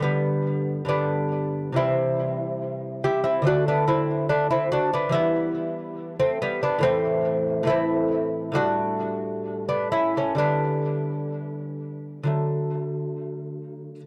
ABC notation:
X:1
M:4/4
L:1/16
Q:1/4=69
K:G
V:1 name="Lute"
[G,B,]4 [B,D]4 [CE]6 [EG] [CE] | [DF] [B,D] [CE]2 [A,D] [CE] [DF] [B,D] [B,E]4- [B,E] [A,C] [G,B,] [B,D] | [A,C]4 [CE]4 [DF]4- [DF] [B,D] [^CE] [A,C] | [B,D]12- [B,D]2 z2 |]
V:2 name="Lute" clef=bass
[G,,D,]4 [G,,D,G,]4 [C,E,G,]8 | [D,A,C]8 [E,G,]8 | [A,,E,]4 [A,,E,A,]4 [A,,G,A,]8 | [D,G,]8 [D,F,A,]8 |]